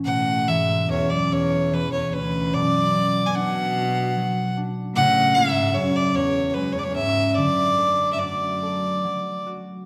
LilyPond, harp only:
\new Staff \with { instrumentName = "Harp" } { \time 3/4 \key d \lydian \tempo 4 = 73 b,8 e8 cis'8 e'8 e8 cis'8 | b,8 fis8 d'8 fis'8 fis8 d'8 | cis8 gis'8 cis'8 fis'8 gis8 cis'8 | d8 a8 fis'8 a'8 fis8 fis'8 | }